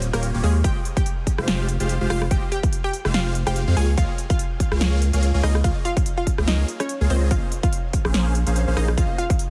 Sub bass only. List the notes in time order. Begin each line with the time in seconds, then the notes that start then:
Already playing: D#1
0.13 D#1
0.34 D#1
0.43 D#2
0.64 F1
1.38 F1
1.80 F1
2.01 F1
2.10 F1
2.31 F1
3.05 F1
3.47 F1
3.68 F2
3.77 C#2
3.98 C#2
4.72 C#2
5.13 C#2
5.34 C#2
5.43 C#2
5.64 C#2
6.38 C#2
7.01 C#2
7.10 C#2
7.31 A#1
8.05 A#1
8.47 A#1
8.68 A#1
8.77 A#1
8.98 A#1